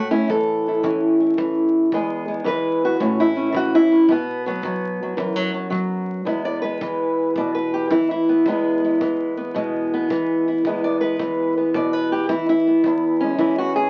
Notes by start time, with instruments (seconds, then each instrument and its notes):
Already playing: steel-string acoustic guitar A2 A3 F#4
0.11 steel-string acoustic guitar C#4 E4
0.29 steel-string acoustic guitar E3 A4, kick
0.68 steel-string acoustic guitar E4
0.83 steel-string acoustic guitar E3 C#4, kick
1.21 steel-string acoustic guitar E4
1.37 steel-string acoustic guitar E3, kick
1.92 steel-string acoustic guitar E2 G#3 B3 G#4, kick
2.28 steel-string acoustic guitar G#3
2.44 steel-string acoustic guitar E3 B4, kick
2.85 steel-string acoustic guitar F#4
3.00 steel-string acoustic guitar A2 C#4, kick
3.20 steel-string acoustic guitar E4
3.36 steel-string acoustic guitar C#4
3.52 steel-string acoustic guitar E3 F#4, kick
3.75 steel-string acoustic guitar E4
3.92 steel-string acoustic guitar C#4
4.09 steel-string acoustic guitar B2 B3, kick
4.46 steel-string acoustic guitar F#3 B3
4.63 steel-string acoustic guitar F#3, kick
5.03 steel-string acoustic guitar F#3
5.17 steel-string acoustic guitar F#2 E3, kick
5.36 steel-string acoustic guitar F#3
5.54 steel-string acoustic guitar F#3
5.70 steel-string acoustic guitar F#3, kick
6.25 steel-string acoustic guitar E2 G#3 B3 E4, kick
6.45 steel-string acoustic guitar D5
6.62 steel-string acoustic guitar G#3 B4
6.81 steel-string acoustic guitar E3, kick
7.36 steel-string acoustic guitar B2 D5, kick
7.55 steel-string acoustic guitar B4
7.74 steel-string acoustic guitar G4
7.91 steel-string acoustic guitar E3 E4, kick
8.11 steel-string acoustic guitar E4
8.29 steel-string acoustic guitar B3
8.46 steel-string acoustic guitar E2 G#3 B3 E4, kick
8.85 steel-string acoustic guitar G#3
9.01 steel-string acoustic guitar E3, kick
9.37 steel-string acoustic guitar B3
9.54 steel-string acoustic guitar B2 G#3, kick
9.94 steel-string acoustic guitar B3
10.10 steel-string acoustic guitar E3, kick
10.48 steel-string acoustic guitar E4
10.65 steel-string acoustic guitar E2 G#3 B3 E4, kick
10.84 steel-string acoustic guitar D5
11.01 steel-string acoustic guitar G#3 B4
11.19 steel-string acoustic guitar E3, kick
11.57 steel-string acoustic guitar B3
11.74 steel-string acoustic guitar B2 D5, kick
11.93 steel-string acoustic guitar B4
12.12 steel-string acoustic guitar G4
12.29 steel-string acoustic guitar E3 E4, kick
12.49 steel-string acoustic guitar E4
12.67 steel-string acoustic guitar B3
12.84 steel-string acoustic guitar E2, kick
13.20 steel-string acoustic guitar G#3 C#4
13.39 steel-string acoustic guitar E3 E4, kick
13.58 steel-string acoustic guitar F#4
13.76 steel-string acoustic guitar G#4